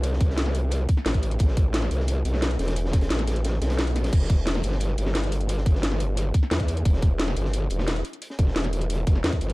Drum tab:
CC |--------------------------------|--------------------------------|--------------------------------|x-------------------------------|
HH |x---x---x---x---x---x---x-x-x-x-|x---x---x-x-x---x---x---x-x-xxx-|x---x-x-x-x-x-x-x---x-x-x-x-x-x-|x---x---x-x-x---x---x---x-x-x-x-|
SD |--o---o-o-o-----------o-o-------|--o-----o-o---o-------o-o---ooo-|--o-o-o-o-o-o---o---o-o-o---o-o-|--o-----o-o---o-------o-o-------|
BD |----o---------------o-----o-----|o---o---------------------------|----o---------------------------|o---o---------------------------|

CC |--------------------------------|--------------------------------|--------------------------------|
HH |x---x---x---x---x---x---x-x-x-x-|x---x---x-x-x---x---x---x-x-x-x-|x---x---x-x-x-x-x---x---x-x-x-x-|
SD |--o---o-o-o-----------o-o-------|--o-----o-o---o-------o-o-------|--o---o-o-o-----------o-o-------|
BD |----o---------------o-----o-----|o---o---------------------------|----o---------------o-----o-----|